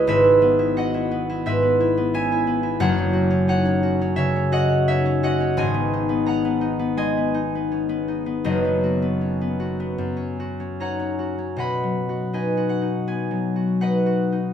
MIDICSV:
0, 0, Header, 1, 2, 480
1, 0, Start_track
1, 0, Key_signature, 5, "major"
1, 0, Tempo, 688073
1, 42, Time_signature, 4, 2, 24, 8
1, 3402, Tempo, 700935
1, 4842, Tempo, 737101
1, 5802, Tempo, 765306
1, 6762, Tempo, 792602
1, 7722, Tempo, 740741
1, 9162, Tempo, 786370
1, 9614, End_track
2, 0, Start_track
2, 0, Title_t, "Harp"
2, 0, Program_c, 0, 46
2, 0, Note_on_c, 0, 64, 75
2, 0, Note_on_c, 0, 68, 72
2, 0, Note_on_c, 0, 75, 105
2, 50, Note_on_c, 0, 32, 96
2, 54, Note_on_c, 0, 44, 96
2, 59, Note_on_c, 0, 71, 108
2, 60, Note_on_c, 0, 76, 127
2, 158, Note_off_c, 0, 64, 0
2, 167, Note_on_c, 0, 64, 72
2, 216, Note_off_c, 0, 75, 0
2, 291, Note_on_c, 0, 59, 82
2, 404, Note_off_c, 0, 64, 0
2, 412, Note_on_c, 0, 64, 83
2, 533, Note_on_c, 0, 66, 57
2, 536, Note_on_c, 0, 78, 102
2, 545, Note_on_c, 0, 75, 87
2, 648, Note_off_c, 0, 64, 0
2, 656, Note_on_c, 0, 64, 75
2, 734, Note_off_c, 0, 66, 0
2, 768, Note_off_c, 0, 59, 0
2, 777, Note_on_c, 0, 59, 74
2, 895, Note_off_c, 0, 64, 0
2, 903, Note_on_c, 0, 64, 81
2, 1011, Note_off_c, 0, 44, 0
2, 1011, Note_off_c, 0, 76, 0
2, 1017, Note_on_c, 0, 44, 79
2, 1019, Note_off_c, 0, 71, 0
2, 1021, Note_on_c, 0, 76, 112
2, 1028, Note_on_c, 0, 71, 84
2, 1125, Note_off_c, 0, 59, 0
2, 1134, Note_on_c, 0, 59, 71
2, 1250, Note_off_c, 0, 64, 0
2, 1258, Note_on_c, 0, 64, 78
2, 1347, Note_off_c, 0, 78, 0
2, 1368, Note_off_c, 0, 59, 0
2, 1377, Note_on_c, 0, 59, 79
2, 1490, Note_off_c, 0, 76, 0
2, 1491, Note_on_c, 0, 61, 67
2, 1496, Note_on_c, 0, 80, 127
2, 1498, Note_on_c, 0, 76, 90
2, 1609, Note_off_c, 0, 64, 0
2, 1617, Note_on_c, 0, 64, 79
2, 1689, Note_off_c, 0, 61, 0
2, 1715, Note_off_c, 0, 59, 0
2, 1723, Note_on_c, 0, 59, 77
2, 1826, Note_off_c, 0, 64, 0
2, 1835, Note_on_c, 0, 64, 78
2, 1952, Note_on_c, 0, 30, 100
2, 1954, Note_on_c, 0, 42, 109
2, 1957, Note_on_c, 0, 78, 127
2, 1961, Note_on_c, 0, 73, 98
2, 1975, Note_off_c, 0, 64, 0
2, 1978, Note_off_c, 0, 59, 0
2, 1981, Note_off_c, 0, 32, 0
2, 1981, Note_off_c, 0, 68, 0
2, 1982, Note_off_c, 0, 80, 0
2, 1983, Note_off_c, 0, 44, 0
2, 1985, Note_off_c, 0, 76, 0
2, 1987, Note_off_c, 0, 71, 0
2, 1987, Note_off_c, 0, 75, 0
2, 2080, Note_on_c, 0, 61, 78
2, 2183, Note_on_c, 0, 66, 78
2, 2297, Note_off_c, 0, 61, 0
2, 2306, Note_on_c, 0, 61, 86
2, 2424, Note_off_c, 0, 78, 0
2, 2428, Note_on_c, 0, 63, 68
2, 2430, Note_off_c, 0, 73, 0
2, 2434, Note_on_c, 0, 78, 115
2, 2438, Note_on_c, 0, 73, 94
2, 2541, Note_off_c, 0, 61, 0
2, 2549, Note_on_c, 0, 61, 81
2, 2641, Note_off_c, 0, 63, 0
2, 2663, Note_off_c, 0, 66, 0
2, 2672, Note_on_c, 0, 66, 75
2, 2791, Note_off_c, 0, 61, 0
2, 2800, Note_on_c, 0, 61, 89
2, 2903, Note_on_c, 0, 76, 124
2, 2904, Note_off_c, 0, 73, 0
2, 2908, Note_on_c, 0, 49, 80
2, 2912, Note_on_c, 0, 73, 89
2, 3033, Note_off_c, 0, 61, 0
2, 3041, Note_on_c, 0, 61, 61
2, 3144, Note_off_c, 0, 66, 0
2, 3146, Note_off_c, 0, 78, 0
2, 3151, Note_on_c, 0, 66, 90
2, 3156, Note_on_c, 0, 78, 127
2, 3158, Note_on_c, 0, 75, 99
2, 3267, Note_off_c, 0, 61, 0
2, 3275, Note_on_c, 0, 61, 66
2, 3395, Note_off_c, 0, 76, 0
2, 3404, Note_on_c, 0, 76, 124
2, 3408, Note_off_c, 0, 73, 0
2, 3412, Note_on_c, 0, 63, 65
2, 3416, Note_on_c, 0, 73, 89
2, 3516, Note_off_c, 0, 61, 0
2, 3524, Note_on_c, 0, 61, 80
2, 3612, Note_off_c, 0, 63, 0
2, 3639, Note_off_c, 0, 66, 0
2, 3639, Note_off_c, 0, 78, 0
2, 3643, Note_off_c, 0, 75, 0
2, 3645, Note_on_c, 0, 66, 83
2, 3650, Note_on_c, 0, 78, 120
2, 3651, Note_on_c, 0, 75, 98
2, 3754, Note_off_c, 0, 61, 0
2, 3763, Note_on_c, 0, 61, 78
2, 3813, Note_off_c, 0, 76, 0
2, 3876, Note_on_c, 0, 32, 101
2, 3879, Note_on_c, 0, 44, 97
2, 3881, Note_off_c, 0, 75, 0
2, 3882, Note_on_c, 0, 80, 127
2, 3890, Note_on_c, 0, 75, 109
2, 3896, Note_off_c, 0, 49, 0
2, 3900, Note_off_c, 0, 30, 0
2, 3902, Note_off_c, 0, 42, 0
2, 3902, Note_off_c, 0, 61, 0
2, 3905, Note_off_c, 0, 66, 0
2, 3905, Note_off_c, 0, 78, 0
2, 3910, Note_off_c, 0, 73, 0
2, 3994, Note_on_c, 0, 59, 70
2, 4127, Note_on_c, 0, 63, 78
2, 4225, Note_off_c, 0, 59, 0
2, 4233, Note_on_c, 0, 59, 76
2, 4347, Note_on_c, 0, 61, 54
2, 4352, Note_on_c, 0, 82, 96
2, 4360, Note_on_c, 0, 78, 77
2, 4470, Note_off_c, 0, 59, 0
2, 4478, Note_on_c, 0, 59, 72
2, 4557, Note_off_c, 0, 61, 0
2, 4582, Note_off_c, 0, 63, 0
2, 4590, Note_on_c, 0, 63, 70
2, 4706, Note_off_c, 0, 59, 0
2, 4714, Note_on_c, 0, 59, 80
2, 4828, Note_off_c, 0, 80, 0
2, 4834, Note_off_c, 0, 75, 0
2, 4837, Note_on_c, 0, 56, 63
2, 4838, Note_on_c, 0, 80, 120
2, 4842, Note_on_c, 0, 75, 84
2, 4959, Note_off_c, 0, 59, 0
2, 4967, Note_on_c, 0, 59, 59
2, 5071, Note_off_c, 0, 63, 0
2, 5079, Note_on_c, 0, 63, 73
2, 5170, Note_off_c, 0, 82, 0
2, 5206, Note_off_c, 0, 59, 0
2, 5214, Note_on_c, 0, 59, 65
2, 5321, Note_on_c, 0, 61, 54
2, 5428, Note_off_c, 0, 59, 0
2, 5435, Note_on_c, 0, 59, 73
2, 5524, Note_off_c, 0, 61, 0
2, 5551, Note_off_c, 0, 63, 0
2, 5559, Note_on_c, 0, 63, 60
2, 5669, Note_off_c, 0, 59, 0
2, 5677, Note_on_c, 0, 59, 64
2, 5794, Note_off_c, 0, 75, 0
2, 5796, Note_on_c, 0, 30, 89
2, 5801, Note_on_c, 0, 42, 80
2, 5804, Note_on_c, 0, 75, 100
2, 5809, Note_on_c, 0, 71, 79
2, 5817, Note_off_c, 0, 32, 0
2, 5818, Note_off_c, 0, 80, 0
2, 5819, Note_off_c, 0, 44, 0
2, 5819, Note_off_c, 0, 56, 0
2, 5915, Note_off_c, 0, 59, 0
2, 5923, Note_on_c, 0, 59, 62
2, 6042, Note_on_c, 0, 66, 63
2, 6151, Note_off_c, 0, 59, 0
2, 6158, Note_on_c, 0, 59, 64
2, 6276, Note_on_c, 0, 61, 47
2, 6396, Note_off_c, 0, 59, 0
2, 6404, Note_on_c, 0, 59, 64
2, 6483, Note_off_c, 0, 61, 0
2, 6511, Note_off_c, 0, 66, 0
2, 6519, Note_on_c, 0, 66, 68
2, 6637, Note_off_c, 0, 59, 0
2, 6645, Note_on_c, 0, 59, 67
2, 6754, Note_off_c, 0, 42, 0
2, 6761, Note_on_c, 0, 42, 68
2, 6778, Note_off_c, 0, 30, 0
2, 6781, Note_off_c, 0, 63, 0
2, 6783, Note_off_c, 0, 59, 0
2, 6873, Note_on_c, 0, 61, 55
2, 6877, Note_off_c, 0, 78, 0
2, 7004, Note_off_c, 0, 66, 0
2, 7012, Note_on_c, 0, 66, 71
2, 7126, Note_off_c, 0, 61, 0
2, 7134, Note_on_c, 0, 61, 58
2, 7255, Note_on_c, 0, 63, 51
2, 7258, Note_on_c, 0, 82, 83
2, 7261, Note_on_c, 0, 73, 69
2, 7264, Note_on_c, 0, 78, 68
2, 7367, Note_off_c, 0, 61, 0
2, 7374, Note_on_c, 0, 61, 59
2, 7457, Note_off_c, 0, 63, 0
2, 7484, Note_off_c, 0, 66, 0
2, 7491, Note_off_c, 0, 75, 0
2, 7491, Note_on_c, 0, 66, 62
2, 7495, Note_off_c, 0, 71, 0
2, 7602, Note_off_c, 0, 61, 0
2, 7609, Note_on_c, 0, 61, 56
2, 7719, Note_on_c, 0, 47, 74
2, 7722, Note_off_c, 0, 78, 0
2, 7730, Note_on_c, 0, 78, 75
2, 7732, Note_on_c, 0, 75, 73
2, 7740, Note_on_c, 0, 83, 100
2, 7741, Note_off_c, 0, 42, 0
2, 7743, Note_off_c, 0, 61, 0
2, 7744, Note_off_c, 0, 82, 0
2, 7746, Note_off_c, 0, 73, 0
2, 7895, Note_on_c, 0, 54, 53
2, 8052, Note_off_c, 0, 66, 0
2, 8059, Note_on_c, 0, 66, 59
2, 8215, Note_off_c, 0, 75, 0
2, 8217, Note_on_c, 0, 63, 54
2, 8221, Note_on_c, 0, 80, 80
2, 8222, Note_on_c, 0, 71, 58
2, 8224, Note_on_c, 0, 75, 64
2, 8363, Note_off_c, 0, 66, 0
2, 8371, Note_on_c, 0, 66, 61
2, 8442, Note_off_c, 0, 78, 0
2, 8449, Note_on_c, 0, 78, 70
2, 8522, Note_off_c, 0, 63, 0
2, 8530, Note_on_c, 0, 63, 54
2, 8618, Note_off_c, 0, 80, 0
2, 8697, Note_on_c, 0, 59, 55
2, 8699, Note_on_c, 0, 80, 76
2, 8840, Note_off_c, 0, 54, 0
2, 8848, Note_on_c, 0, 54, 57
2, 9003, Note_off_c, 0, 66, 0
2, 9010, Note_on_c, 0, 66, 57
2, 9164, Note_off_c, 0, 78, 0
2, 9166, Note_off_c, 0, 63, 0
2, 9170, Note_off_c, 0, 71, 0
2, 9172, Note_on_c, 0, 63, 56
2, 9173, Note_on_c, 0, 78, 82
2, 9174, Note_off_c, 0, 75, 0
2, 9177, Note_on_c, 0, 71, 66
2, 9181, Note_on_c, 0, 75, 64
2, 9320, Note_off_c, 0, 66, 0
2, 9327, Note_on_c, 0, 66, 65
2, 9479, Note_off_c, 0, 63, 0
2, 9487, Note_on_c, 0, 63, 49
2, 9505, Note_off_c, 0, 80, 0
2, 9614, Note_off_c, 0, 47, 0
2, 9614, Note_off_c, 0, 54, 0
2, 9614, Note_off_c, 0, 59, 0
2, 9614, Note_off_c, 0, 63, 0
2, 9614, Note_off_c, 0, 66, 0
2, 9614, Note_off_c, 0, 71, 0
2, 9614, Note_off_c, 0, 75, 0
2, 9614, Note_off_c, 0, 78, 0
2, 9614, Note_off_c, 0, 83, 0
2, 9614, End_track
0, 0, End_of_file